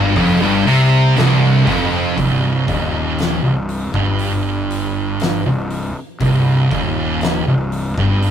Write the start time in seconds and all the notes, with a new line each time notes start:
Already playing: G1 G2
0.15 F1 F2, kick, open hi-hat
0.40 G1 G2
0.65 C2 C3, open hi-hat
1.16 C1 C2, snare, open hi-hat
1.67 F1 F2, kick, open hi-hat
2.17 C1 C2, kick, open hi-hat
2.67 D#1 D#2, kick, open hi-hat
3.19 snare, open hi-hat
3.42 C1 C2
3.69 open hi-hat
3.92 G1 G2, kick
4.19 open hi-hat
4.71 open hi-hat
5.20 snare, open hi-hat
5.45 C1 C2
5.70 open hi-hat
6.20 C1 C2, kick, open hi-hat
6.71 D#1 D#2, kick, open hi-hat
7.21 snare, open hi-hat
7.47 C1 C2
7.72 open hi-hat
7.97 G1 G2, kick
8.23 open hi-hat